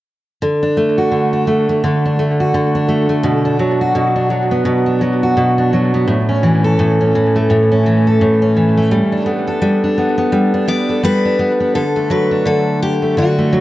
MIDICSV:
0, 0, Header, 1, 3, 480
1, 0, Start_track
1, 0, Key_signature, 2, "major"
1, 0, Tempo, 708383
1, 275, Time_signature, 4, 2, 24, 8
1, 9219, End_track
2, 0, Start_track
2, 0, Title_t, "Steel-string acoustic guitar"
2, 0, Program_c, 0, 25
2, 7239, Note_on_c, 0, 74, 76
2, 7482, Note_off_c, 0, 74, 0
2, 7484, Note_on_c, 0, 71, 84
2, 7959, Note_off_c, 0, 71, 0
2, 7962, Note_on_c, 0, 69, 80
2, 8203, Note_off_c, 0, 69, 0
2, 8205, Note_on_c, 0, 71, 71
2, 8424, Note_off_c, 0, 71, 0
2, 8447, Note_on_c, 0, 69, 72
2, 8687, Note_off_c, 0, 69, 0
2, 8690, Note_on_c, 0, 67, 66
2, 8906, Note_off_c, 0, 67, 0
2, 8933, Note_on_c, 0, 66, 64
2, 9219, Note_off_c, 0, 66, 0
2, 9219, End_track
3, 0, Start_track
3, 0, Title_t, "Steel-string acoustic guitar"
3, 0, Program_c, 1, 25
3, 283, Note_on_c, 1, 50, 65
3, 424, Note_on_c, 1, 62, 46
3, 521, Note_on_c, 1, 57, 52
3, 663, Note_on_c, 1, 66, 48
3, 753, Note_off_c, 1, 50, 0
3, 756, Note_on_c, 1, 50, 57
3, 899, Note_off_c, 1, 62, 0
3, 901, Note_on_c, 1, 62, 47
3, 989, Note_off_c, 1, 57, 0
3, 997, Note_on_c, 1, 57, 49
3, 1138, Note_off_c, 1, 57, 0
3, 1146, Note_on_c, 1, 57, 47
3, 1243, Note_off_c, 1, 50, 0
3, 1245, Note_on_c, 1, 50, 64
3, 1391, Note_off_c, 1, 62, 0
3, 1393, Note_on_c, 1, 62, 45
3, 1477, Note_off_c, 1, 57, 0
3, 1486, Note_on_c, 1, 57, 52
3, 1625, Note_off_c, 1, 66, 0
3, 1628, Note_on_c, 1, 66, 51
3, 1720, Note_off_c, 1, 50, 0
3, 1723, Note_on_c, 1, 50, 65
3, 1861, Note_off_c, 1, 62, 0
3, 1864, Note_on_c, 1, 62, 44
3, 1948, Note_off_c, 1, 57, 0
3, 1956, Note_on_c, 1, 57, 50
3, 2087, Note_off_c, 1, 57, 0
3, 2095, Note_on_c, 1, 57, 47
3, 2192, Note_on_c, 1, 47, 66
3, 2251, Note_off_c, 1, 57, 0
3, 2336, Note_off_c, 1, 62, 0
3, 2338, Note_on_c, 1, 62, 45
3, 2431, Note_off_c, 1, 50, 0
3, 2434, Note_on_c, 1, 54, 52
3, 2579, Note_off_c, 1, 66, 0
3, 2581, Note_on_c, 1, 66, 51
3, 2668, Note_off_c, 1, 47, 0
3, 2676, Note_on_c, 1, 47, 60
3, 2808, Note_off_c, 1, 62, 0
3, 2816, Note_on_c, 1, 62, 46
3, 2906, Note_off_c, 1, 54, 0
3, 2914, Note_on_c, 1, 54, 53
3, 3057, Note_on_c, 1, 59, 44
3, 3143, Note_off_c, 1, 47, 0
3, 3151, Note_on_c, 1, 47, 68
3, 3285, Note_off_c, 1, 62, 0
3, 3294, Note_on_c, 1, 62, 44
3, 3387, Note_off_c, 1, 54, 0
3, 3395, Note_on_c, 1, 54, 54
3, 3537, Note_off_c, 1, 66, 0
3, 3545, Note_on_c, 1, 66, 52
3, 3630, Note_off_c, 1, 47, 0
3, 3638, Note_on_c, 1, 47, 64
3, 3774, Note_off_c, 1, 62, 0
3, 3782, Note_on_c, 1, 62, 46
3, 3876, Note_off_c, 1, 54, 0
3, 3883, Note_on_c, 1, 54, 53
3, 4017, Note_off_c, 1, 59, 0
3, 4025, Note_on_c, 1, 59, 50
3, 4114, Note_off_c, 1, 47, 0
3, 4117, Note_on_c, 1, 45, 67
3, 4175, Note_off_c, 1, 62, 0
3, 4176, Note_off_c, 1, 59, 0
3, 4176, Note_off_c, 1, 66, 0
3, 4177, Note_off_c, 1, 54, 0
3, 4260, Note_on_c, 1, 61, 51
3, 4358, Note_on_c, 1, 52, 54
3, 4501, Note_on_c, 1, 69, 51
3, 4593, Note_off_c, 1, 45, 0
3, 4601, Note_on_c, 1, 45, 61
3, 4740, Note_off_c, 1, 61, 0
3, 4748, Note_on_c, 1, 61, 48
3, 4837, Note_off_c, 1, 52, 0
3, 4846, Note_on_c, 1, 52, 56
3, 4986, Note_on_c, 1, 57, 48
3, 5073, Note_off_c, 1, 45, 0
3, 5082, Note_on_c, 1, 45, 67
3, 5220, Note_off_c, 1, 61, 0
3, 5228, Note_on_c, 1, 61, 46
3, 5318, Note_off_c, 1, 52, 0
3, 5326, Note_on_c, 1, 52, 53
3, 5466, Note_off_c, 1, 69, 0
3, 5468, Note_on_c, 1, 69, 50
3, 5555, Note_off_c, 1, 45, 0
3, 5563, Note_on_c, 1, 45, 67
3, 5697, Note_off_c, 1, 61, 0
3, 5705, Note_on_c, 1, 61, 45
3, 5796, Note_off_c, 1, 52, 0
3, 5804, Note_on_c, 1, 52, 54
3, 5942, Note_off_c, 1, 57, 0
3, 5945, Note_on_c, 1, 57, 49
3, 6036, Note_off_c, 1, 52, 0
3, 6038, Note_on_c, 1, 55, 65
3, 6096, Note_off_c, 1, 61, 0
3, 6097, Note_off_c, 1, 45, 0
3, 6181, Note_on_c, 1, 62, 46
3, 6271, Note_off_c, 1, 57, 0
3, 6273, Note_on_c, 1, 59, 50
3, 6294, Note_off_c, 1, 69, 0
3, 6420, Note_on_c, 1, 69, 52
3, 6508, Note_off_c, 1, 55, 0
3, 6516, Note_on_c, 1, 55, 62
3, 6663, Note_off_c, 1, 62, 0
3, 6666, Note_on_c, 1, 62, 47
3, 6753, Note_off_c, 1, 59, 0
3, 6761, Note_on_c, 1, 59, 48
3, 6888, Note_off_c, 1, 59, 0
3, 6896, Note_on_c, 1, 59, 49
3, 6986, Note_off_c, 1, 55, 0
3, 6994, Note_on_c, 1, 55, 65
3, 7139, Note_off_c, 1, 62, 0
3, 7141, Note_on_c, 1, 62, 45
3, 7226, Note_off_c, 1, 59, 0
3, 7234, Note_on_c, 1, 59, 55
3, 7377, Note_off_c, 1, 69, 0
3, 7380, Note_on_c, 1, 69, 49
3, 7467, Note_off_c, 1, 55, 0
3, 7476, Note_on_c, 1, 55, 65
3, 7621, Note_off_c, 1, 62, 0
3, 7624, Note_on_c, 1, 62, 45
3, 7711, Note_off_c, 1, 59, 0
3, 7719, Note_on_c, 1, 59, 55
3, 7855, Note_off_c, 1, 59, 0
3, 7863, Note_on_c, 1, 59, 48
3, 7962, Note_on_c, 1, 50, 65
3, 8013, Note_off_c, 1, 55, 0
3, 8015, Note_off_c, 1, 59, 0
3, 8104, Note_on_c, 1, 57, 45
3, 8198, Note_on_c, 1, 54, 53
3, 8340, Note_off_c, 1, 62, 0
3, 8343, Note_on_c, 1, 62, 42
3, 8436, Note_off_c, 1, 50, 0
3, 8439, Note_on_c, 1, 50, 64
3, 8815, Note_off_c, 1, 57, 0
3, 8823, Note_on_c, 1, 57, 48
3, 8922, Note_off_c, 1, 50, 0
3, 8924, Note_on_c, 1, 50, 64
3, 9061, Note_off_c, 1, 57, 0
3, 9069, Note_on_c, 1, 57, 46
3, 9162, Note_off_c, 1, 54, 0
3, 9165, Note_on_c, 1, 54, 57
3, 9219, Note_off_c, 1, 50, 0
3, 9219, Note_off_c, 1, 54, 0
3, 9219, Note_off_c, 1, 57, 0
3, 9219, Note_off_c, 1, 62, 0
3, 9219, Note_off_c, 1, 69, 0
3, 9219, End_track
0, 0, End_of_file